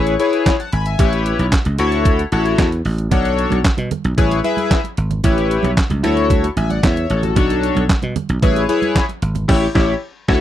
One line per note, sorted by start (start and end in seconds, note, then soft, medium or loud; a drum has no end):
0.00 0.15 A1 loud
0.00 0.14 E4 loud
0.00 0.14 G#4 medium
0.00 0.14 B4 medium
0.00 0.15 C#5 loud
0.07 closed hi-hat medium
0.19 0.54 E4 medium
0.19 0.55 G#4 medium
0.19 0.55 B4 medium
0.19 0.55 C#5 loud
0.19 closed hi-hat medium
0.33 closed hi-hat soft
0.46 kick loud
0.46 snare loud
0.46 clap medium
0.46 closed hi-hat loud
0.59 0.72 F#5 medium
0.59 0.72 A5 medium
0.59 closed hi-hat soft
0.73 0.95 G#1 loud
0.73 0.85 G#5 medium
0.73 0.85 B5 medium
0.73 closed hi-hat medium
0.86 1.12 E5 medium
0.86 1.11 G#5 medium
0.86 closed hi-hat medium
0.99 1.32 A1 loud
0.99 1.46 E4 medium
0.99 1.46 G4 medium
0.99 1.46 B4 medium
0.99 1.46 C#5 loud
0.99 kick loud
0.99 closed hi-hat loud
1.13 closed hi-hat soft
1.26 closed hi-hat medium
1.39 1.50 B1 medium
1.39 closed hi-hat medium
1.52 kick loud
1.52 snare loud
1.52 clap medium
1.52 closed hi-hat loud
1.65 1.77 C#2 medium
1.65 closed hi-hat medium
1.78 2.23 D2 loud
1.78 2.21 E4 loud
1.78 2.21 F#4 medium
1.78 2.21 A4 medium
1.78 2.22 C#5 loud
1.78 closed hi-hat medium
1.92 closed hi-hat medium
2.05 kick loud
2.05 closed hi-hat medium
2.19 closed hi-hat medium
2.32 2.54 A1 medium
2.32 2.67 E4 medium
2.32 2.67 F#4 medium
2.32 2.67 A4 medium
2.32 2.67 C#5 loud
2.32 closed hi-hat medium
2.46 closed hi-hat soft
2.58 2.81 E2 medium
2.58 kick loud
2.58 snare loud
2.58 clap medium
2.58 closed hi-hat loud
2.72 closed hi-hat soft
2.85 3.07 A1 medium
2.85 open hi-hat medium
2.98 closed hi-hat medium
3.11 3.45 B1 loud
3.11 3.58 D4 medium
3.11 3.58 F#4 medium
3.11 3.58 A4 medium
3.11 3.59 C#5 loud
3.11 kick loud
3.11 closed hi-hat loud
3.11 muted conga soft
3.11 low conga medium
3.25 closed hi-hat soft
3.39 closed hi-hat medium
3.50 3.63 B1 medium
3.50 closed hi-hat medium
3.50 high conga medium
3.65 kick loud
3.65 snare loud
3.65 clap loud
3.65 closed hi-hat loud
3.77 3.89 B2 medium
3.77 closed hi-hat medium
3.77 muted conga soft
3.77 high conga medium
3.91 closed hi-hat medium
3.91 high conga medium
3.91 low conga medium
4.05 4.16 B1 medium
4.05 closed hi-hat soft
4.17 4.40 A1 medium
4.17 4.39 E4 medium
4.17 4.39 G#4 medium
4.17 4.39 B4 medium
4.17 4.39 C#5 loud
4.17 kick loud
4.17 closed hi-hat medium
4.17 muted conga soft
4.17 high conga medium
4.32 closed hi-hat medium
4.32 muted conga soft
4.44 4.79 E4 medium
4.44 4.79 G#4 medium
4.44 4.79 B4 medium
4.44 4.80 E5 loud
4.44 closed hi-hat medium
4.44 high conga medium
4.57 closed hi-hat soft
4.57 high conga medium
4.71 kick loud
4.71 snare medium
4.71 clap medium
4.71 closed hi-hat loud
4.84 closed hi-hat soft
4.84 muted conga soft
4.97 5.20 G#1 medium
4.97 closed hi-hat medium
5.10 closed hi-hat medium
5.10 low conga medium
5.24 5.57 A1 loud
5.24 5.71 E4 medium
5.24 5.71 G4 medium
5.24 5.71 B4 medium
5.24 5.71 C#5 loud
5.24 kick loud
5.24 closed hi-hat loud
5.24 muted conga soft
5.24 low conga medium
5.38 closed hi-hat soft
5.51 closed hi-hat medium
5.63 5.75 B1 medium
5.63 closed hi-hat medium
5.63 high conga medium
5.77 kick loud
5.77 snare loud
5.77 clap medium
5.77 closed hi-hat medium
5.77 muted conga soft
5.90 6.01 C#2 medium
5.90 closed hi-hat medium
5.90 muted conga soft
5.90 high conga medium
6.03 6.48 D2 loud
6.03 6.46 E4 medium
6.03 6.46 F#4 medium
6.03 6.46 A4 medium
6.03 6.46 C#5 loud
6.03 closed hi-hat medium
6.03 high conga medium
6.03 low conga medium
6.17 closed hi-hat medium
6.30 kick loud
6.30 closed hi-hat medium
6.30 muted conga soft
6.30 high conga medium
6.44 closed hi-hat medium
6.44 muted conga soft
6.56 6.79 A1 medium
6.56 6.70 E5 medium
6.56 6.69 G#5 medium
6.56 closed hi-hat medium
6.56 high conga medium
6.70 6.83 D5 medium
6.70 6.83 F#5 medium
6.70 closed hi-hat soft
6.70 high conga medium
6.83 7.05 E2 medium
6.83 7.08 C#5 medium
6.83 7.08 E5 medium
6.83 kick loud
6.83 snare medium
6.83 clap medium
6.83 closed hi-hat loud
6.96 closed hi-hat soft
6.96 muted conga soft
7.10 7.32 A1 medium
7.10 7.22 A4 medium
7.10 7.22 C#5 medium
7.10 closed hi-hat medium
7.23 7.35 F#4 medium
7.23 7.35 A4 medium
7.23 closed hi-hat medium
7.23 low conga medium
7.36 7.70 B1 loud
7.36 7.83 D4 loud
7.36 7.83 F#4 medium
7.36 7.83 A4 medium
7.36 7.83 C#5 loud
7.36 kick loud
7.36 closed hi-hat loud
7.36 low conga medium
7.50 closed hi-hat medium
7.50 muted conga soft
7.63 closed hi-hat medium
7.75 7.87 B1 medium
7.75 closed hi-hat medium
7.75 high conga medium
7.89 muted slap bass stroke soft
7.89 kick loud
7.89 snare loud
7.89 clap loud
7.89 closed hi-hat medium
8.02 8.14 B2 medium
8.02 closed hi-hat medium
8.02 muted conga soft
8.02 high conga medium
8.16 closed hi-hat medium
8.16 high conga medium
8.16 low conga medium
8.29 8.40 B1 medium
8.29 closed hi-hat medium
8.42 8.65 A1 loud
8.42 8.64 E4 loud
8.42 8.64 G#4 medium
8.42 8.64 B4 medium
8.42 8.64 C#5 loud
8.42 kick loud
8.42 closed hi-hat medium
8.42 muted conga soft
8.42 high conga medium
8.56 closed hi-hat medium
8.56 muted conga soft
8.69 9.04 E4 medium
8.69 9.04 G#4 medium
8.69 9.04 B4 medium
8.69 9.04 C#5 loud
8.69 closed hi-hat medium
8.69 high conga soft
8.82 closed hi-hat soft
8.82 high conga medium
8.96 kick loud
8.96 snare loud
8.96 clap medium
8.96 closed hi-hat loud
9.09 closed hi-hat soft
9.09 muted conga soft
9.22 9.44 G#1 loud
9.22 closed hi-hat medium
9.35 closed hi-hat medium
9.35 low conga medium
9.48 9.67 A1 loud
9.48 9.66 E4 loud
9.48 9.67 G4 loud
9.48 9.67 C#5 loud
9.48 kick loud
9.48 snare loud
9.48 crash medium
9.75 9.93 A1 loud
9.75 9.93 E4 loud
9.75 9.93 G4 loud
9.75 9.94 C#5 loud
9.75 kick loud
9.75 snare loud
10.28 10.41 D2 loud
10.28 10.41 E4 loud
10.28 10.41 F#4 loud
10.28 10.41 A4 loud
10.28 10.41 C#5 loud
10.28 kick loud
10.28 snare loud